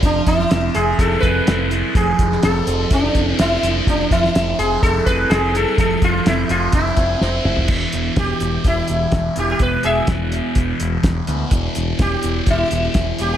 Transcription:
<<
  \new Staff \with { instrumentName = "Sitar" } { \time 4/4 \tempo 4 = 125 d'8 e'4 gis'8 a'8 b'4 r8 | gis'4 a'4 d'4 e'8. r16 | d'8 e'4 gis'8 a'8 b'8 gis'8 a'8 | a'8 f'8 e'8 f'8 e'4 r4 |
r4 g'4 e'4. g'16 g'16 | b'8 <gis' e''>8 r2. | r4 g'4 e'4. g'16 g'16 | }
  \new Staff \with { instrumentName = "Distorted electric guitar" } { \time 4/4 f4 c'8 c''8 e'8 c'8 c''8 e'8 | f4 c'8 c''8 e'8 c'8 c''8 e'8 | f4 c'8 c''8 e'8 c'8 c''8 e'8 | f4 c'8 c''8 e'8 c'8 c''8 e'8 |
<e, b, e>2.~ <e, b, e>8 <e, b, e>8 | <e, b, e>2.~ <e, b, e>8 <e, b, e>8 | <e, b, e>2.~ <e, b, e>8 <e, b, e>8 | }
  \new Staff \with { instrumentName = "Picked electric bass" } { \clef bass \time 4/4 f,,8 f,,8 f,,8 f,,8 f,,8 f,,8 f,,4 | f,,8 f,,8 f,,8 f,,8 f,,8 f,,8 f,,8 f,,8 | f,,8 f,,8 f,,8 f,,8 f,,8 f,,8 f,,4 | f,,8 f,,8 f,,8 f,,8 f,,8 f,,8 f,,8 f,,8 |
e,,8 e,,8 e,,8 e,,8 e,,8 e,,8 e,,8 e,,8 | e,,8 e,,8 e,,4 e,,8 e,,8 e,,8 d,8 | e,,8 e,,8 e,,8 e,,8 e,,8 e,,8 e,,8 e,,8 | }
  \new DrumStaff \with { instrumentName = "Drums" } \drummode { \time 4/4 <hh bd>8 <hh bd>16 sn16 <hh sn>8 hh8 <hh bd>8 <hh bd>8 <hh sn>8 hh8 | <hh bd>8 <hh bd>16 sn16 <hh sn>8 hh8 <hh bd>8 <hh bd>8 <hh sn>8 hh8 | <hh bd>8 <hh bd>16 sn16 <hh sn>8 hh8 <hh bd>8 <hh bd>8 <hh sn>8 hh8 | <hh bd>8 <hh bd>8 <hh sn>8 hh8 <hh bd>8 <hh bd>8 sn8 toml16 tomfh16 |
<cymc bd>8 hh8 <hh bd sn>8 hh8 <hh bd>8 hh8 <hh bd sn>8 hh8 | <hh bd>8 hh8 <hh bd sn>8 hh8 <hh bd>8 hh8 <hh bd sn>8 hh8 | <hh bd>8 hh8 <hh bd sn>8 hh8 <hh bd>8 hh8 <hh bd sn>8 hh8 | }
>>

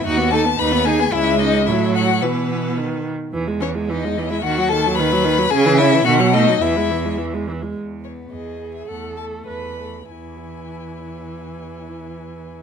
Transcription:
<<
  \new Staff \with { instrumentName = "Violin" } { \time 2/4 \key e \major \tempo 4 = 108 fis''8 a''8 b''8 gis''8 | e''8 dis''8 e''8 fis''8 | b'4. r8 | r8 cis''8 dis''8. e''16 |
fis''8 a''8 b''4 | gis''8 e''8 fis''8 dis''8 | e''4 r4 | r8 cis''8 dis''8. e''16 |
fis''8 a''8 b''4 | gis''2~ | gis''2 | }
  \new Staff \with { instrumentName = "Violin" } { \time 2/4 \key e \major fis'8 a'8 b'8 gis'8 | e'8 dis'8 e'8 fis'8 | b4. r8 | r8 cis'8 dis'8. e'16 |
fis'8 a'8 b'4 | gis'8 e'8 fis'8 dis'8 | e'4 r4 | r8 b4 b8 |
a8 a4 a8 | e'2~ | e'2 | }
  \new Staff \with { instrumentName = "Viola" } { \clef bass \time 2/4 \key e \major dis'16 b16 dis'16 b16 dis'16 b16 dis'16 b16 | gis4 fis4 | e4 dis8. r16 | e16 gis16 e16 gis16 e16 gis16 e16 gis16 |
dis16 fis16 dis16 fis16 dis16 fis16 dis16 fis16 | cis16 e16 cis16 e16 dis16 fis16 a16 fis16 | e16 gis16 e16 gis16 e16 gis16 e16 gis16 | r4 gis'4 |
a'4 b'8 r8 | e2~ | e2 | }
  \new Staff \with { instrumentName = "Cello" } { \clef bass \time 2/4 \key e \major dis,4 dis,4 | cis,4 a,4 | b,4. r8 | e,2 |
dis,2 | cis4 b,4 | e,4. r8 | e,4 e,4 |
e,4 e,4 | e,2~ | e,2 | }
>>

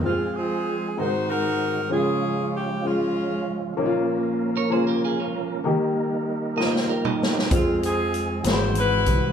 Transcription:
<<
  \new Staff \with { instrumentName = "Clean electric guitar" } { \time 6/8 \key aes \major \tempo 4. = 64 r2. | r2. | r4 r16 <bes' des''>16 <aes' c''>16 <g' bes'>16 <f' aes'>16 <des' f'>8. | r4. <c'' ees''>16 c''16 <g' bes'>16 <ees' g'>8. |
r2. | }
  \new Staff \with { instrumentName = "Saxophone section" } { \time 6/8 \key aes \major << { f'8 aes'4 c''8 bes'4 | aes'4 g'8 f'4 r8 | r2. | r2. |
f'8 aes'4 c''8 b'4 | } \\ { <aes c'>8 <c' f'>4 <ees' ges'>8 <ees' ges'>4 | <des' f'>4. <aes des'>4. | r2. | r2. |
<aes c'>8 <c' f'>4 <e' ges'>8 <e' ges'>4 | } >> }
  \new Staff \with { instrumentName = "Upright piano" } { \time 6/8 \key aes \major <c' f' aes'>4 r8 <aes c' ees' ges' bes' c''>4 r8 | <aes des' f'>4 r8 <aes des' f'>4 r8 | <bes des' ees' f'>4 r8 <bes des' f'>4 r8 | <bes ees' g'>4 r8 <bes ees' f'>4 r8 |
<c' f' aes'>4 r8 <aes c' e' ges' bes' b''>4 r8 | }
  \new Staff \with { instrumentName = "Upright piano" } { \clef bass \time 6/8 \key aes \major r4. aes,4. | des4. r4. | bes,4. r4. | ees4. r4. |
r4. aes,4. | }
  \new Staff \with { instrumentName = "Tonewheel organ" } { \time 6/8 \key aes \major <f aes c' g' aes'>4. <ees aes c' ges'>4. | <f aes des' f' g'>2. | <f bes des' bes'>2. | <g bes ees' bes'>2. |
<f aes c' g' aes'>4. <e aes c' ges'>4. | }
  \new Staff \with { instrumentName = "Fingered electric bass" } { \clef bass \time 6/8 \key aes \major r2. | r2. | r2. | r2. |
f,4. aes,,4 c,8 | }
  \new DrumStaff \with { instrumentName = "Drums" } \drummode { \time 6/8 r4. r4. | r4. r4. | r4. r4. | r4. sn16 sn8 toml16 sn16 sn16 |
<hh bd>8 hh8 hh8 <hh sn>8 hh8 <hh bd>8 | }
>>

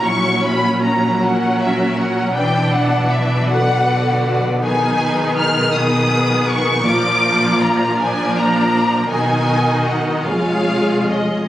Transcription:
<<
  \new Staff \with { instrumentName = "Violin section" } { \time 6/8 \key b \minor \tempo 4. = 53 cis'''8 b''8 ais''8 fis''8 e''8 fis''8 | g''8 fis''8 e''8 fis''4~ fis''16 r16 | \key bes \phrygian aes''4 f'''8 ees'''4 des'''8 | d'''4 bes''8 aes''8 bes''4 |
aes''4 fis''8 f''4 ees''8 | }
  \new Staff \with { instrumentName = "Violin section" } { \time 6/8 \key b \minor << { cis''4. ais'4. | d''2. | \key bes \phrygian ces''4. ces''4. | d''2. |
dis''4. des''4. | } \\ { e'4. fis'4. | b'2. | aes'4. aes'4. | bes'4. bes'4. |
fis'4. aes'4. | } >> }
  \new Staff \with { instrumentName = "Viola section" } { \time 6/8 \key b \minor << { cis'4. cis'4. | d'4. fis'4. | \key bes \phrygian ees'4. ces'4. | f'4. d'4. |
dis'4. f'4. | } \\ { fis2. | e4. d4. | ees2. | f4. f4. |
dis4. aes4. | } >> }
  \new Staff \with { instrumentName = "Cello section" } { \clef bass \time 6/8 \key b \minor ais,2. | b,2.~ | \key bes \phrygian b,2. | bes,2. |
b,4. f,4. | }
  \new Staff \with { instrumentName = "Double bass section" } { \clef bass \time 6/8 \key b \minor ais,,2. | b,,2.~ | \key bes \phrygian b,,2. | bes,,2. |
b,,4. f,,4. | }
>>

